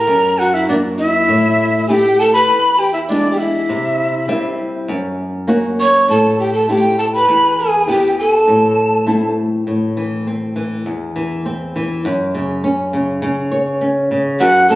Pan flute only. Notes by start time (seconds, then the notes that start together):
Already playing: A#4
0.40 F#4
0.55 E4
0.69 D4
0.98 E4
1.88 G4
2.20 A4
2.35 B4
2.78 G4
2.93 E4
3.08 D4
3.32 G4
3.39 E4
5.80 C#5
6.10 A4
6.40 G4
6.53 A4
6.69 G4
6.99 A4
7.16 B4
7.59 G#4
7.89 G4
8.20 A4
14.40 F#4
14.68 A4